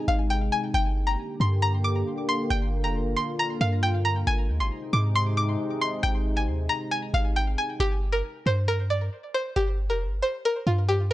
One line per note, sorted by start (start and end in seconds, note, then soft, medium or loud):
0.00 0.70 C3 medium
0.00 0.70 G#3 medium
0.00 0.70 D#4 medium
0.08 0.50 G#1 loud
0.08 0.25 F5 medium
0.30 0.47 G5 medium
0.52 0.69 G#5 medium
0.74 1.16 G1 loud
0.74 4.23 D3 medium
0.74 4.23 A#3 medium
0.74 2.49 G4 medium
0.74 1.05 G5 loud
1.07 1.38 A#5 medium
1.40 2.04 G2 loud
1.40 1.57 C6 medium
1.62 1.79 A#5 medium
1.84 2.26 D6 medium
2.29 2.45 C6 medium
2.50 2.85 G1 loud
2.50 4.25 F4 medium
2.50 2.82 G5 loud
2.84 3.02 F1 loud
2.84 3.15 A#5 medium
3.00 3.16 G1 loud
3.16 3.33 C6 medium
3.39 3.56 A#5 loud
3.61 4.24 G2 loud
3.61 3.77 F5 medium
3.83 3.99 G5 medium
4.05 4.22 A#5 medium
4.27 4.51 G#1 loud
4.27 7.76 C3 medium
4.27 7.76 G#3 medium
4.27 7.76 D#4 medium
4.27 4.58 G#5 loud
4.49 4.62 D#2 loud
4.60 4.71 G#1 loud
4.60 4.91 C6 medium
4.93 5.57 G#2 loud
4.93 5.10 D6 medium
5.15 5.32 C6 loud
5.37 5.79 D6 medium
5.81 5.98 C6 medium
6.03 6.49 G#1 loud
6.03 6.34 G5 loud
6.37 6.68 G#5 medium
6.48 6.69 D#2 loud
6.69 6.86 A#5 medium
6.91 7.08 G#5 medium
7.14 7.56 G#1 loud
7.14 7.31 F5 medium
7.36 7.53 G5 medium
7.58 7.75 G#5 medium
7.80 8.22 G1 loud
7.80 8.11 G4 loud
8.12 8.44 A#4 medium
8.46 9.10 G2 loud
8.46 8.63 C5 medium
8.68 8.85 A#4 medium
8.90 9.32 D5 medium
9.34 9.51 C5 medium
9.56 9.91 G1 loud
9.56 9.87 G4 loud
9.89 10.07 F1 loud
9.89 10.21 A#4 medium
10.06 10.22 G1 loud
10.22 10.39 C5 medium
10.45 10.62 A#4 medium
10.67 11.13 G2 loud
10.67 10.83 F4 medium
10.89 11.05 G4 medium